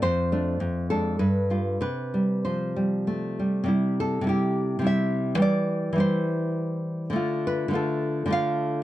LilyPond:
\new Staff \with { instrumentName = "Nylon-string guitar" } { \time 3/4 \key c \major \tempo 4 = 104 << { c''4. a'8 b'4 | b'4 c''4 r4 | r8 a'8 g'4 e''4 | d''4 c''2 |
r8 b'8 a'4 f''4 | } \\ { f,8 <a d'>8 f,8 <aes d'>8 g,8 <g f'>8 | c8 g8 f8 g8 a8 g8 | <c g e'>4 <c g e'>4 <c g e'>4 | <e g e'>4 <e g e'>2 |
<d a f'>4 <d a f'>4 <d a f'>4 | } >> }